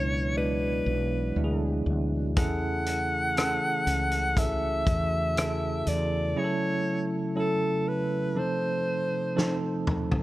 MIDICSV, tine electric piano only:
0, 0, Header, 1, 2, 480
1, 0, Start_track
1, 0, Key_signature, 3, "major"
1, 0, Tempo, 1000000
1, 1138, Time_signature, 4, 2, 24, 8
1, 4909, End_track
2, 0, Start_track
2, 0, Title_t, "Tine electric piano"
2, 0, Program_c, 0, 4
2, 0, Control_c, 0, 64, 127
2, 0, Note_on_c, 0, 47, 55
2, 0, Note_on_c, 0, 56, 64
2, 0, Note_on_c, 0, 62, 60
2, 0, Note_on_c, 0, 64, 59
2, 0, Note_on_c, 0, 71, 85
2, 0, Note_on_c, 0, 73, 71
2, 152, Note_off_c, 0, 62, 0
2, 153, Note_off_c, 0, 56, 0
2, 155, Note_off_c, 0, 64, 0
2, 155, Note_off_c, 0, 73, 0
2, 174, Note_on_c, 0, 56, 61
2, 178, Note_on_c, 0, 62, 54
2, 178, Note_on_c, 0, 64, 54
2, 178, Note_on_c, 0, 74, 66
2, 632, Note_off_c, 0, 56, 0
2, 634, Note_off_c, 0, 62, 0
2, 634, Note_off_c, 0, 64, 0
2, 634, Note_off_c, 0, 74, 0
2, 654, Note_on_c, 0, 56, 66
2, 656, Note_on_c, 0, 62, 55
2, 658, Note_on_c, 0, 64, 57
2, 659, Note_on_c, 0, 66, 55
2, 690, Note_off_c, 0, 66, 0
2, 692, Note_on_c, 0, 68, 76
2, 1112, Note_off_c, 0, 56, 0
2, 1113, Note_off_c, 0, 62, 0
2, 1114, Note_off_c, 0, 64, 0
2, 1131, Note_off_c, 0, 68, 0
2, 1136, Note_on_c, 0, 68, 83
2, 1137, Note_on_c, 0, 52, 54
2, 1137, Note_on_c, 0, 61, 78
2, 1140, Note_on_c, 0, 64, 75
2, 1142, Note_on_c, 0, 69, 87
2, 1144, Control_c, 0, 64, 0
2, 1147, Note_off_c, 0, 47, 0
2, 1149, Note_off_c, 0, 71, 0
2, 1226, Control_c, 0, 64, 127
2, 1593, Note_off_c, 0, 68, 0
2, 1594, Note_off_c, 0, 61, 0
2, 1595, Note_off_c, 0, 64, 0
2, 1596, Note_off_c, 0, 69, 0
2, 1616, Note_on_c, 0, 68, 65
2, 1618, Note_on_c, 0, 61, 65
2, 1621, Note_on_c, 0, 64, 60
2, 1621, Note_on_c, 0, 69, 75
2, 1838, Note_off_c, 0, 52, 0
2, 2073, Note_off_c, 0, 68, 0
2, 2074, Note_off_c, 0, 61, 0
2, 2075, Note_off_c, 0, 64, 0
2, 2076, Note_off_c, 0, 69, 0
2, 2095, Note_on_c, 0, 68, 57
2, 2098, Note_on_c, 0, 61, 53
2, 2099, Note_on_c, 0, 64, 57
2, 2100, Note_on_c, 0, 69, 67
2, 2553, Note_off_c, 0, 68, 0
2, 2554, Note_off_c, 0, 61, 0
2, 2554, Note_off_c, 0, 64, 0
2, 2555, Note_off_c, 0, 69, 0
2, 2576, Note_on_c, 0, 49, 59
2, 2576, Note_on_c, 0, 68, 67
2, 2578, Note_on_c, 0, 64, 64
2, 2580, Note_on_c, 0, 69, 74
2, 3033, Note_off_c, 0, 49, 0
2, 3033, Note_off_c, 0, 68, 0
2, 3034, Note_off_c, 0, 64, 0
2, 3035, Note_off_c, 0, 69, 0
2, 3055, Note_on_c, 0, 49, 55
2, 3055, Note_on_c, 0, 54, 85
2, 3055, Note_on_c, 0, 61, 73
2, 3056, Note_on_c, 0, 64, 78
2, 3058, Note_on_c, 0, 68, 70
2, 3064, Control_c, 0, 64, 0
2, 3089, Note_off_c, 0, 68, 0
2, 3091, Note_on_c, 0, 69, 94
2, 3133, Control_c, 0, 64, 127
2, 3512, Note_off_c, 0, 54, 0
2, 3512, Note_off_c, 0, 61, 0
2, 3513, Note_off_c, 0, 64, 0
2, 3530, Note_off_c, 0, 69, 0
2, 3532, Note_on_c, 0, 54, 72
2, 3532, Note_on_c, 0, 61, 62
2, 3535, Note_on_c, 0, 64, 66
2, 3537, Note_on_c, 0, 69, 79
2, 3757, Note_off_c, 0, 49, 0
2, 3991, Note_off_c, 0, 54, 0
2, 3991, Note_off_c, 0, 61, 0
2, 3993, Note_off_c, 0, 64, 0
2, 3993, Note_off_c, 0, 69, 0
2, 4011, Note_on_c, 0, 53, 61
2, 4014, Note_on_c, 0, 60, 57
2, 4015, Note_on_c, 0, 48, 53
2, 4015, Note_on_c, 0, 63, 56
2, 4016, Note_on_c, 0, 69, 73
2, 4024, Control_c, 0, 64, 0
2, 4105, Control_c, 0, 64, 127
2, 4470, Note_off_c, 0, 53, 0
2, 4472, Note_off_c, 0, 60, 0
2, 4472, Note_off_c, 0, 63, 0
2, 4473, Note_off_c, 0, 69, 0
2, 4493, Note_on_c, 0, 53, 67
2, 4494, Note_on_c, 0, 60, 65
2, 4495, Note_on_c, 0, 63, 59
2, 4497, Note_on_c, 0, 69, 77
2, 4717, Note_off_c, 0, 48, 0
2, 4909, Note_off_c, 0, 53, 0
2, 4909, Note_off_c, 0, 60, 0
2, 4909, Note_off_c, 0, 63, 0
2, 4909, Note_off_c, 0, 69, 0
2, 4909, End_track
0, 0, End_of_file